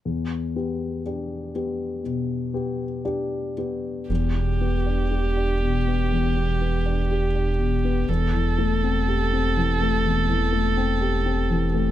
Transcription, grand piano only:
X:1
M:4/4
L:1/16
Q:1/4=61
K:Em
V:1 name="Grand piano"
E,,2 [B,G]2 [DG]2 [B,G]2 B,,2 [B,G]2 [DG]2 [B,G]2 | E,, B,, B, D G D B,, B, E,, B,, B, D G D B,, B, | E,, E, A, C G C E, A, E,, E, A, C G C E, A, |]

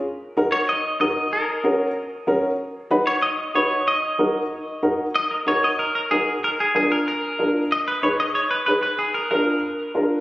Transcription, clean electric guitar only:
X:1
M:4/4
L:1/8
Q:1/4=188
K:Ebm
V:1 name="Clean electric guitar"
z3 d e2 e2 | B4 z4 | z3 d ^d2 _d2 | e4 z4 |
e B d e B B A2 | B A A B B3 z | e c d e d c c c | A B B4 z2 |]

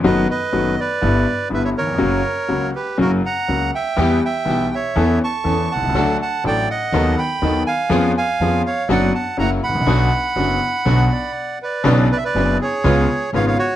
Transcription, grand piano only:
X:1
M:4/4
L:1/16
Q:1/4=122
K:Bm
V:1 name="Grand piano" clef=bass
[F,,^D,F,A,B,F]2 z2 [F,,D,F,A,B,F]2 z2 [G,,,G,,=D,G,B,E]2 z2 [G,,,G,,D,G,B,E]2 z/2 ^D,,/2 E,,/2 ^E,,/2 | [F,,C,F,^A,F]2 z2 [C,,C,F,A,F]2 z2 [F,,C,F,A,F]2 z2 [C,,C,F,A,F]2 z2 | [E,,E,G,B,G]2 z2 [B,,,B,,E,G,B,G]2 z2 [E,,E,B,CA]2 z2 [E,,E,B,CA]2 z/2 B,,,/2 =C,,/2 ^C,,/2 | [D,,D,F,A,DA]2 z2 [A,,,A,,F,A,DA]2 z2 [^D,,^D,F,B,^DA]2 z2 [D,,D,F,B,DA]2 z2 |
[^E,,^E,B,C^G]2 z2 [E,,E,B,CG]2 z2 [F,,D,F,B,F]2 z2 [F,,C,F,^A,=E]2 z/2 ^G,,,/2 =A,,,/2 ^A,,,/2 | [B,,,B,,D,F,B,F]2 z2 [F,,,F,,D,F,B,F]2 z2 [B,,,B,,D,F,B,F]2 z6 | [B,,,B,,C,F,B,D]2 z2 [F,,,F,,C,F,B,D]2 z2 [C,,C,^G,B,^E]2 z2 [^G,,,^G,,C,G,B,E]2 z2 |]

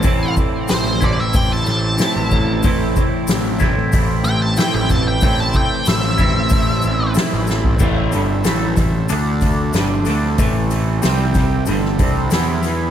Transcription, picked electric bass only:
X:1
M:4/4
L:1/16
Q:1/4=93
K:Am
V:1 name="Picked electric bass" clef=bass
A,,,2 z2 A,,,3 A,,,3 A,,,2 z A,,,3 | A,,,2 z2 A,,,3 A,,,3 A,,,2 z A,,,3 | A,,,2 z2 A,,,3 A,,,3 A,,,2 z A,,,3 | A,,,2 G,,,2 A,,,2 A,,,2 D,,4 G,,,2 D,,2 |
A,,,4 C,,4 G,,,2 C,,2 E,,4 |]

